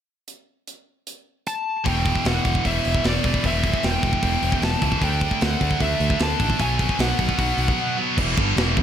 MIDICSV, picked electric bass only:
0, 0, Header, 1, 2, 480
1, 0, Start_track
1, 0, Key_signature, 1, "minor"
1, 0, Tempo, 395257
1, 338, Time_signature, 4, 2, 24, 8
1, 10721, End_track
2, 0, Start_track
2, 0, Title_t, "Picked electric bass"
2, 0, Program_c, 0, 34
2, 2255, Note_on_c, 0, 28, 85
2, 2568, Note_off_c, 0, 28, 0
2, 2738, Note_on_c, 0, 28, 85
2, 2894, Note_off_c, 0, 28, 0
2, 2975, Note_on_c, 0, 28, 80
2, 3132, Note_off_c, 0, 28, 0
2, 3219, Note_on_c, 0, 28, 87
2, 3374, Note_off_c, 0, 28, 0
2, 3467, Note_on_c, 0, 28, 80
2, 3620, Note_off_c, 0, 28, 0
2, 3701, Note_on_c, 0, 28, 90
2, 3855, Note_off_c, 0, 28, 0
2, 3936, Note_on_c, 0, 28, 78
2, 4092, Note_off_c, 0, 28, 0
2, 4176, Note_on_c, 0, 28, 90
2, 4488, Note_off_c, 0, 28, 0
2, 4663, Note_on_c, 0, 28, 82
2, 4817, Note_off_c, 0, 28, 0
2, 4891, Note_on_c, 0, 28, 86
2, 5049, Note_off_c, 0, 28, 0
2, 5135, Note_on_c, 0, 28, 92
2, 5292, Note_off_c, 0, 28, 0
2, 5372, Note_on_c, 0, 28, 87
2, 5530, Note_off_c, 0, 28, 0
2, 5607, Note_on_c, 0, 28, 93
2, 5766, Note_off_c, 0, 28, 0
2, 5851, Note_on_c, 0, 37, 84
2, 6008, Note_off_c, 0, 37, 0
2, 6088, Note_on_c, 0, 38, 91
2, 6402, Note_off_c, 0, 38, 0
2, 6581, Note_on_c, 0, 38, 84
2, 6735, Note_off_c, 0, 38, 0
2, 6810, Note_on_c, 0, 38, 82
2, 6968, Note_off_c, 0, 38, 0
2, 7047, Note_on_c, 0, 38, 92
2, 7206, Note_off_c, 0, 38, 0
2, 7287, Note_on_c, 0, 38, 87
2, 7446, Note_off_c, 0, 38, 0
2, 7534, Note_on_c, 0, 38, 92
2, 7691, Note_off_c, 0, 38, 0
2, 7769, Note_on_c, 0, 33, 87
2, 7927, Note_off_c, 0, 33, 0
2, 8012, Note_on_c, 0, 35, 89
2, 8324, Note_off_c, 0, 35, 0
2, 8485, Note_on_c, 0, 35, 82
2, 8645, Note_off_c, 0, 35, 0
2, 8729, Note_on_c, 0, 35, 83
2, 8887, Note_off_c, 0, 35, 0
2, 8964, Note_on_c, 0, 35, 90
2, 9124, Note_off_c, 0, 35, 0
2, 9200, Note_on_c, 0, 35, 86
2, 9361, Note_off_c, 0, 35, 0
2, 9927, Note_on_c, 0, 28, 100
2, 10155, Note_off_c, 0, 28, 0
2, 10168, Note_on_c, 0, 31, 104
2, 10393, Note_off_c, 0, 31, 0
2, 10400, Note_on_c, 0, 28, 101
2, 10631, Note_off_c, 0, 28, 0
2, 10648, Note_on_c, 0, 28, 87
2, 10721, Note_off_c, 0, 28, 0
2, 10721, End_track
0, 0, End_of_file